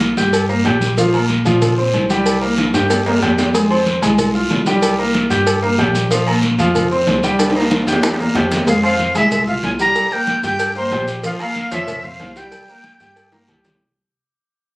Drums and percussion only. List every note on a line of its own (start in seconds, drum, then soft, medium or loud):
0.01 cowbell medium
0.01 high conga medium
0.01 low agogo medium
0.01 short guiro medium
0.01 maracas soft
0.17 cowbell medium
0.17 high conga soft
0.17 short guiro medium
0.17 maracas medium
0.33 cowbell loud
0.33 high conga soft
0.33 low agogo loud
0.33 long guiro medium
0.33 maracas medium
0.50 high conga soft
0.50 maracas soft
0.65 cowbell medium
0.65 high conga soft
0.65 low timbale medium
0.65 low agogo loud
0.65 short guiro medium
0.65 maracas soft
0.81 cowbell medium
0.81 high conga medium
0.81 short guiro medium
0.81 maracas medium
0.97 cowbell loud
0.97 high conga soft
0.97 low agogo medium
0.97 long guiro medium
0.97 maracas medium
1.14 high conga soft
1.14 low agogo loud
1.14 maracas soft
1.29 cowbell medium
1.29 high conga medium
1.29 short guiro medium
1.29 maracas soft
1.46 cowbell medium
1.46 high conga soft
1.46 low agogo medium
1.46 short guiro medium
1.46 maracas medium
1.62 cowbell loud
1.62 high conga soft
1.62 low conga medium
1.62 low agogo loud
1.62 long guiro medium
1.62 maracas medium
1.78 high conga soft
1.78 maracas soft
1.94 cowbell medium
1.94 high conga medium
1.94 low agogo medium
1.94 short guiro medium
1.94 maracas soft
2.10 cowbell medium
2.10 high conga medium
2.10 short guiro medium
2.10 maracas medium
2.26 cowbell loud
2.26 high conga soft
2.26 low agogo loud
2.26 long guiro medium
2.26 maracas loud
2.42 high conga soft
2.42 maracas soft
2.58 cowbell medium
2.58 high conga medium
2.58 high timbale medium
2.58 low agogo medium
2.58 short guiro medium
2.58 maracas soft
2.74 cowbell medium
2.74 high conga soft
2.74 high timbale medium
2.74 short guiro medium
2.74 maracas medium
2.90 cowbell loud
2.90 high conga soft
2.90 low timbale medium
2.90 low agogo loud
2.90 long guiro medium
2.90 maracas medium
3.06 high conga soft
3.06 low timbale loud
3.06 maracas soft
3.22 cowbell medium
3.22 high conga soft
3.22 low timbale medium
3.22 low agogo loud
3.22 short guiro medium
3.22 maracas soft
3.38 cowbell medium
3.38 high conga medium
3.38 low timbale loud
3.38 short guiro medium
3.38 maracas medium
3.54 cowbell loud
3.54 high conga soft
3.54 low agogo medium
3.54 long guiro medium
3.54 maracas loud
3.70 high conga soft
3.70 low agogo loud
3.70 maracas soft
3.86 cowbell medium
3.86 high conga medium
3.86 short guiro medium
3.86 maracas soft
4.02 cowbell medium
4.02 high conga soft
4.02 low agogo medium
4.02 short guiro medium
4.02 maracas medium
4.18 cowbell loud
4.18 high conga soft
4.18 low conga medium
4.18 low agogo loud
4.18 long guiro medium
4.18 maracas medium
4.35 high conga soft
4.35 maracas soft
4.50 cowbell medium
4.50 high conga medium
4.50 low timbale medium
4.50 low agogo medium
4.50 short guiro medium
4.50 maracas soft
4.66 cowbell medium
4.66 high conga medium
4.66 short guiro medium
4.66 maracas medium
4.82 cowbell loud
4.82 low agogo loud
4.82 long guiro medium
4.82 maracas loud
4.98 high conga soft
4.98 maracas soft
5.14 cowbell medium
5.14 high conga loud
5.14 low agogo medium
5.14 short guiro medium
5.14 maracas soft
5.30 cowbell medium
5.30 high conga soft
5.30 short guiro medium
5.30 maracas medium
5.46 cowbell loud
5.46 high conga soft
5.46 low agogo loud
5.46 long guiro medium
5.46 maracas loud
5.63 high conga soft
5.63 maracas soft
5.79 cowbell medium
5.79 high conga soft
5.79 low timbale medium
5.79 low agogo loud
5.79 short guiro medium
5.79 maracas soft
5.95 cowbell medium
5.95 high conga medium
5.95 short guiro medium
5.95 maracas medium
6.11 cowbell loud
6.11 high conga soft
6.11 low agogo medium
6.11 long guiro medium
6.11 maracas loud
6.27 high conga soft
6.27 low agogo loud
6.27 maracas soft
6.43 cowbell medium
6.43 high conga medium
6.43 short guiro medium
6.43 maracas soft
6.59 cowbell medium
6.59 high conga soft
6.59 low agogo medium
6.59 short guiro medium
6.59 maracas medium
6.75 cowbell loud
6.75 high conga soft
6.75 low conga medium
6.75 low agogo loud
6.75 long guiro medium
6.75 maracas medium
6.91 high conga soft
6.91 maracas soft
7.07 cowbell medium
7.07 high conga medium
7.07 low timbale medium
7.07 low agogo medium
7.07 short guiro medium
7.07 maracas soft
7.23 cowbell medium
7.23 high conga medium
7.23 short guiro medium
7.23 maracas medium
7.39 cowbell loud
7.39 high conga soft
7.39 high timbale loud
7.39 low agogo loud
7.39 long guiro medium
7.39 maracas loud
7.50 high timbale medium
7.55 high conga soft
7.55 maracas soft
7.60 high timbale loud
7.71 cowbell medium
7.71 high conga loud
7.71 high timbale medium
7.71 low agogo medium
7.71 short guiro medium
7.71 maracas soft
7.82 high timbale medium
7.87 cowbell medium
7.87 high conga soft
7.87 short guiro medium
7.87 maracas medium
7.93 low timbale medium
8.03 cowbell loud
8.03 high bongo loud
8.03 high conga soft
8.03 low timbale medium
8.03 low agogo loud
8.03 long guiro medium
8.03 maracas medium
8.14 low timbale medium
8.19 high conga soft
8.19 maracas soft
8.35 cowbell medium
8.35 low bongo loud
8.35 high conga soft
8.35 low timbale medium
8.35 low agogo loud
8.35 short guiro medium
8.35 maracas soft
8.51 cowbell medium
8.51 low bongo medium
8.51 high conga medium
8.51 short guiro medium
8.51 maracas medium
8.57 low timbale loud
8.67 cowbell loud
8.67 high conga soft
8.67 low agogo medium
8.67 long guiro medium
8.67 maracas medium
8.83 high conga soft
8.83 low agogo loud
8.83 maracas soft
8.99 cowbell medium
8.99 high conga medium
8.99 short guiro medium
8.99 maracas soft
9.15 cowbell medium
9.15 high conga soft
9.15 low agogo medium
9.15 short guiro medium
9.15 maracas medium
9.31 cowbell loud
9.31 high conga soft
9.31 low conga medium
9.31 low agogo loud
9.31 long guiro medium
9.31 maracas medium
9.47 high conga soft
9.47 low conga medium
9.47 maracas soft
9.63 cowbell medium
9.63 high conga medium
9.63 low timbale medium
9.63 low agogo medium
9.63 short guiro medium
9.63 maracas soft
9.79 cowbell medium
9.79 high conga medium
9.79 short guiro medium
9.79 maracas medium
9.95 cowbell loud
9.95 low agogo loud
9.95 long guiro medium
9.95 maracas loud
10.11 high conga soft
10.11 maracas soft
10.27 cowbell medium
10.27 high conga loud
10.27 low agogo medium
10.27 short guiro medium
10.27 maracas soft
10.43 cowbell medium
10.43 short guiro medium
10.43 maracas medium
10.59 cowbell loud
10.59 high conga soft
10.59 low agogo loud
10.59 long guiro medium
10.59 maracas loud
10.75 high conga soft
10.75 maracas soft
10.92 cowbell medium
10.92 high conga soft
10.92 low timbale medium
10.92 low agogo loud
10.92 short guiro medium
10.92 maracas soft
11.08 cowbell medium
11.08 short guiro medium
11.08 maracas medium
11.23 cowbell loud
11.23 high conga soft
11.23 low agogo medium
11.23 long guiro medium
11.23 maracas loud
11.40 high conga soft
11.40 low agogo loud
11.40 maracas soft
11.55 cowbell medium
11.55 high conga medium
11.55 short guiro medium
11.55 maracas soft
11.71 cowbell medium
11.71 high conga soft
11.71 low agogo medium
11.71 short guiro medium
11.71 maracas medium
11.87 cowbell loud
11.87 high conga soft
11.87 low conga medium
11.87 low agogo loud
11.87 long guiro medium
11.87 maracas loud
12.04 high conga soft
12.04 low conga medium
12.04 maracas soft
12.20 cowbell medium
12.20 high conga medium
12.20 low timbale medium
12.20 low agogo medium
12.20 short guiro medium
12.20 maracas soft
12.36 cowbell medium
12.36 high conga medium
12.36 short guiro medium
12.36 maracas medium
12.52 cowbell loud
12.52 high conga soft
12.52 low agogo loud
12.52 long guiro medium
12.52 maracas medium
12.68 high conga soft
12.68 maracas soft
12.84 cowbell medium
12.84 high conga loud
12.84 low agogo medium
12.84 short guiro medium
12.84 maracas soft
13.00 cowbell medium
13.00 high conga soft
13.00 short guiro medium
13.00 maracas medium
13.16 cowbell loud
13.16 high conga soft
13.16 low agogo loud
13.16 long guiro medium
13.16 maracas medium
13.32 high bongo loud
13.32 high conga soft
13.32 maracas soft
13.48 cowbell medium
13.48 low bongo medium
13.48 high conga soft
13.48 low agogo loud
13.48 short guiro medium
13.48 maracas soft
13.64 cowbell medium
13.64 low bongo loud
13.64 short guiro medium
13.64 maracas medium